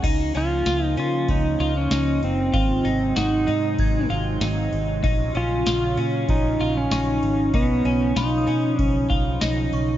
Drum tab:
CC |x-------|--------|--------|--------|
RD |xxxxxxxx|xxxxxxxx|xxxxxxxx|xxxxxxxx|
TB |--x---x-|--x---x-|--x---x-|--x---x-|
SD |--o---o-|--o---o-|--o---o-|--o---o-|
BD |o---o---|o---o---|o---o---|o---oo--|